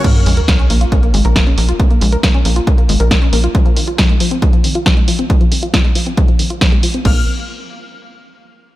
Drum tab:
CC |x---------------|----------------|----------------|----------------|
HH |xxoxxxoxxxoxxxox|xxoxxxoxxxoxxxox|xxoxxxoxxxoxxxox|xxoxxxoxxxoxxxox|
SD |----o-------o---|----o-------o---|----o-------o---|----o-------o---|
BD |o---o---o---o---|o---o---o---o---|o---o---o---o---|o---o---o---o---|

CC |x---------------|
HH |----------------|
SD |----------------|
BD |o---------------|